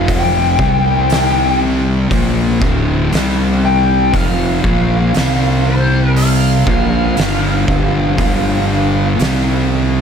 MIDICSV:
0, 0, Header, 1, 5, 480
1, 0, Start_track
1, 0, Tempo, 1011804
1, 43, Time_signature, 4, 2, 24, 8
1, 4749, End_track
2, 0, Start_track
2, 0, Title_t, "Lead electric guitar"
2, 0, Program_c, 0, 29
2, 0, Note_on_c, 0, 77, 88
2, 54, Note_off_c, 0, 77, 0
2, 56, Note_on_c, 0, 79, 102
2, 751, Note_off_c, 0, 79, 0
2, 1732, Note_on_c, 0, 79, 98
2, 1970, Note_off_c, 0, 79, 0
2, 1972, Note_on_c, 0, 77, 102
2, 2689, Note_on_c, 0, 72, 79
2, 2711, Note_off_c, 0, 77, 0
2, 2928, Note_on_c, 0, 77, 88
2, 2934, Note_off_c, 0, 72, 0
2, 4749, Note_off_c, 0, 77, 0
2, 4749, End_track
3, 0, Start_track
3, 0, Title_t, "Distorted electric guitar"
3, 0, Program_c, 1, 30
3, 0, Note_on_c, 1, 41, 84
3, 0, Note_on_c, 1, 48, 95
3, 0, Note_on_c, 1, 53, 101
3, 276, Note_off_c, 1, 41, 0
3, 276, Note_off_c, 1, 48, 0
3, 280, Note_off_c, 1, 53, 0
3, 281, Note_on_c, 1, 48, 89
3, 284, Note_on_c, 1, 55, 81
3, 286, Note_on_c, 1, 60, 86
3, 996, Note_off_c, 1, 48, 0
3, 997, Note_off_c, 1, 55, 0
3, 998, Note_off_c, 1, 60, 0
3, 999, Note_on_c, 1, 46, 98
3, 1001, Note_on_c, 1, 53, 94
3, 1001, Note_on_c, 1, 58, 116
3, 1233, Note_off_c, 1, 46, 0
3, 1235, Note_off_c, 1, 53, 0
3, 1235, Note_off_c, 1, 58, 0
3, 1235, Note_on_c, 1, 38, 82
3, 1240, Note_on_c, 1, 45, 94
3, 1242, Note_on_c, 1, 50, 103
3, 1473, Note_off_c, 1, 38, 0
3, 1475, Note_off_c, 1, 45, 0
3, 1475, Note_on_c, 1, 48, 96
3, 1476, Note_off_c, 1, 50, 0
3, 1477, Note_on_c, 1, 55, 102
3, 1480, Note_on_c, 1, 60, 100
3, 1953, Note_off_c, 1, 48, 0
3, 1954, Note_off_c, 1, 55, 0
3, 1955, Note_off_c, 1, 60, 0
3, 1957, Note_on_c, 1, 41, 81
3, 1959, Note_on_c, 1, 48, 107
3, 1960, Note_on_c, 1, 53, 108
3, 2194, Note_off_c, 1, 41, 0
3, 2195, Note_off_c, 1, 48, 0
3, 2195, Note_off_c, 1, 53, 0
3, 2199, Note_on_c, 1, 46, 91
3, 2202, Note_on_c, 1, 53, 97
3, 2204, Note_on_c, 1, 58, 94
3, 2435, Note_off_c, 1, 46, 0
3, 2436, Note_off_c, 1, 53, 0
3, 2437, Note_off_c, 1, 58, 0
3, 2441, Note_on_c, 1, 48, 101
3, 2446, Note_on_c, 1, 55, 90
3, 2447, Note_on_c, 1, 60, 94
3, 3156, Note_off_c, 1, 48, 0
3, 3159, Note_off_c, 1, 55, 0
3, 3159, Note_off_c, 1, 60, 0
3, 3163, Note_on_c, 1, 46, 85
3, 3164, Note_on_c, 1, 53, 95
3, 3166, Note_on_c, 1, 58, 102
3, 3397, Note_off_c, 1, 46, 0
3, 3398, Note_off_c, 1, 53, 0
3, 3399, Note_off_c, 1, 58, 0
3, 3402, Note_on_c, 1, 43, 88
3, 3403, Note_on_c, 1, 50, 104
3, 3406, Note_on_c, 1, 55, 102
3, 3636, Note_off_c, 1, 43, 0
3, 3637, Note_off_c, 1, 50, 0
3, 3638, Note_off_c, 1, 55, 0
3, 3648, Note_on_c, 1, 43, 90
3, 3649, Note_on_c, 1, 50, 94
3, 3652, Note_on_c, 1, 55, 102
3, 3879, Note_off_c, 1, 43, 0
3, 3880, Note_off_c, 1, 50, 0
3, 3881, Note_off_c, 1, 55, 0
3, 3887, Note_on_c, 1, 43, 92
3, 3888, Note_on_c, 1, 50, 110
3, 3890, Note_on_c, 1, 55, 104
3, 4360, Note_off_c, 1, 43, 0
3, 4360, Note_on_c, 1, 48, 92
3, 4365, Note_off_c, 1, 50, 0
3, 4365, Note_off_c, 1, 55, 0
3, 4365, Note_on_c, 1, 55, 95
3, 4366, Note_on_c, 1, 60, 101
3, 4749, Note_off_c, 1, 48, 0
3, 4749, Note_off_c, 1, 55, 0
3, 4749, Note_off_c, 1, 60, 0
3, 4749, End_track
4, 0, Start_track
4, 0, Title_t, "Fingered electric bass"
4, 0, Program_c, 2, 33
4, 0, Note_on_c, 2, 29, 89
4, 262, Note_off_c, 2, 29, 0
4, 281, Note_on_c, 2, 36, 98
4, 984, Note_off_c, 2, 36, 0
4, 1001, Note_on_c, 2, 34, 85
4, 1226, Note_off_c, 2, 34, 0
4, 1240, Note_on_c, 2, 26, 92
4, 1465, Note_off_c, 2, 26, 0
4, 1487, Note_on_c, 2, 36, 93
4, 1947, Note_off_c, 2, 36, 0
4, 1965, Note_on_c, 2, 29, 95
4, 2188, Note_off_c, 2, 29, 0
4, 2202, Note_on_c, 2, 34, 95
4, 2427, Note_off_c, 2, 34, 0
4, 2451, Note_on_c, 2, 36, 98
4, 3149, Note_off_c, 2, 36, 0
4, 3165, Note_on_c, 2, 34, 91
4, 3388, Note_off_c, 2, 34, 0
4, 3410, Note_on_c, 2, 31, 88
4, 3631, Note_off_c, 2, 31, 0
4, 3645, Note_on_c, 2, 31, 92
4, 3868, Note_off_c, 2, 31, 0
4, 3883, Note_on_c, 2, 31, 102
4, 4344, Note_off_c, 2, 31, 0
4, 4369, Note_on_c, 2, 36, 89
4, 4749, Note_off_c, 2, 36, 0
4, 4749, End_track
5, 0, Start_track
5, 0, Title_t, "Drums"
5, 39, Note_on_c, 9, 36, 100
5, 39, Note_on_c, 9, 46, 57
5, 86, Note_off_c, 9, 46, 0
5, 87, Note_off_c, 9, 36, 0
5, 279, Note_on_c, 9, 36, 102
5, 327, Note_off_c, 9, 36, 0
5, 520, Note_on_c, 9, 46, 59
5, 534, Note_on_c, 9, 38, 114
5, 568, Note_off_c, 9, 46, 0
5, 581, Note_off_c, 9, 38, 0
5, 1001, Note_on_c, 9, 36, 101
5, 1002, Note_on_c, 9, 46, 51
5, 1048, Note_off_c, 9, 36, 0
5, 1049, Note_off_c, 9, 46, 0
5, 1241, Note_on_c, 9, 36, 95
5, 1288, Note_off_c, 9, 36, 0
5, 1482, Note_on_c, 9, 46, 54
5, 1495, Note_on_c, 9, 38, 116
5, 1530, Note_off_c, 9, 46, 0
5, 1543, Note_off_c, 9, 38, 0
5, 1962, Note_on_c, 9, 36, 93
5, 1962, Note_on_c, 9, 46, 50
5, 2010, Note_off_c, 9, 36, 0
5, 2010, Note_off_c, 9, 46, 0
5, 2202, Note_on_c, 9, 36, 104
5, 2249, Note_off_c, 9, 36, 0
5, 2440, Note_on_c, 9, 46, 57
5, 2453, Note_on_c, 9, 38, 116
5, 2487, Note_off_c, 9, 46, 0
5, 2501, Note_off_c, 9, 38, 0
5, 2924, Note_on_c, 9, 46, 59
5, 2971, Note_off_c, 9, 46, 0
5, 3163, Note_on_c, 9, 36, 103
5, 3211, Note_off_c, 9, 36, 0
5, 3401, Note_on_c, 9, 46, 59
5, 3414, Note_on_c, 9, 38, 108
5, 3448, Note_off_c, 9, 46, 0
5, 3461, Note_off_c, 9, 38, 0
5, 3644, Note_on_c, 9, 36, 111
5, 3691, Note_off_c, 9, 36, 0
5, 3882, Note_on_c, 9, 46, 55
5, 3883, Note_on_c, 9, 36, 105
5, 3929, Note_off_c, 9, 46, 0
5, 3930, Note_off_c, 9, 36, 0
5, 4362, Note_on_c, 9, 46, 56
5, 4375, Note_on_c, 9, 38, 111
5, 4409, Note_off_c, 9, 46, 0
5, 4423, Note_off_c, 9, 38, 0
5, 4749, End_track
0, 0, End_of_file